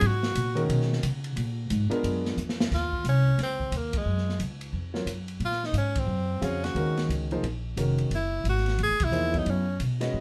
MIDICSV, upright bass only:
0, 0, Header, 1, 3, 480
1, 0, Start_track
1, 0, Tempo, 337458
1, 17, Time_signature, 4, 2, 24, 8
1, 14514, End_track
2, 0, Start_track
2, 0, Title_t, "Upright bass"
2, 0, Program_c, 0, 32
2, 23, Note_on_c, 0, 44, 85
2, 486, Note_off_c, 0, 44, 0
2, 504, Note_on_c, 0, 46, 91
2, 966, Note_off_c, 0, 46, 0
2, 979, Note_on_c, 0, 47, 80
2, 1444, Note_off_c, 0, 47, 0
2, 1463, Note_on_c, 0, 49, 86
2, 1926, Note_off_c, 0, 49, 0
2, 1935, Note_on_c, 0, 46, 89
2, 2402, Note_off_c, 0, 46, 0
2, 2423, Note_on_c, 0, 44, 93
2, 2700, Note_off_c, 0, 44, 0
2, 2892, Note_on_c, 0, 42, 84
2, 3361, Note_off_c, 0, 42, 0
2, 3369, Note_on_c, 0, 41, 78
2, 3840, Note_off_c, 0, 41, 0
2, 3863, Note_on_c, 0, 39, 74
2, 4322, Note_off_c, 0, 39, 0
2, 4330, Note_on_c, 0, 36, 79
2, 4801, Note_off_c, 0, 36, 0
2, 4809, Note_on_c, 0, 37, 77
2, 5274, Note_off_c, 0, 37, 0
2, 5282, Note_on_c, 0, 39, 77
2, 5757, Note_off_c, 0, 39, 0
2, 5765, Note_on_c, 0, 42, 71
2, 6239, Note_off_c, 0, 42, 0
2, 6253, Note_on_c, 0, 37, 80
2, 6718, Note_off_c, 0, 37, 0
2, 6726, Note_on_c, 0, 41, 76
2, 7188, Note_off_c, 0, 41, 0
2, 7196, Note_on_c, 0, 42, 69
2, 7671, Note_off_c, 0, 42, 0
2, 7679, Note_on_c, 0, 46, 76
2, 8145, Note_off_c, 0, 46, 0
2, 8153, Note_on_c, 0, 44, 88
2, 8621, Note_off_c, 0, 44, 0
2, 8629, Note_on_c, 0, 42, 82
2, 9111, Note_off_c, 0, 42, 0
2, 9123, Note_on_c, 0, 41, 77
2, 9587, Note_off_c, 0, 41, 0
2, 9596, Note_on_c, 0, 39, 78
2, 10075, Note_off_c, 0, 39, 0
2, 10080, Note_on_c, 0, 37, 78
2, 10557, Note_off_c, 0, 37, 0
2, 10570, Note_on_c, 0, 34, 74
2, 11036, Note_off_c, 0, 34, 0
2, 11045, Note_on_c, 0, 29, 69
2, 11515, Note_off_c, 0, 29, 0
2, 11523, Note_on_c, 0, 30, 74
2, 11998, Note_off_c, 0, 30, 0
2, 12004, Note_on_c, 0, 32, 77
2, 12478, Note_off_c, 0, 32, 0
2, 12487, Note_on_c, 0, 33, 75
2, 12650, Note_on_c, 0, 30, 49
2, 12671, Note_off_c, 0, 33, 0
2, 12801, Note_off_c, 0, 30, 0
2, 12810, Note_on_c, 0, 28, 59
2, 12955, Note_off_c, 0, 28, 0
2, 12964, Note_on_c, 0, 40, 70
2, 13438, Note_off_c, 0, 40, 0
2, 13455, Note_on_c, 0, 42, 79
2, 13923, Note_off_c, 0, 42, 0
2, 13938, Note_on_c, 0, 47, 79
2, 14404, Note_off_c, 0, 47, 0
2, 14418, Note_on_c, 0, 45, 74
2, 14514, Note_off_c, 0, 45, 0
2, 14514, End_track
3, 0, Start_track
3, 0, Title_t, "Muted upright bass strokes"
3, 2716, Note_on_c, 9, 29, 38
3, 2858, Note_off_c, 9, 29, 0
3, 14514, End_track
0, 0, End_of_file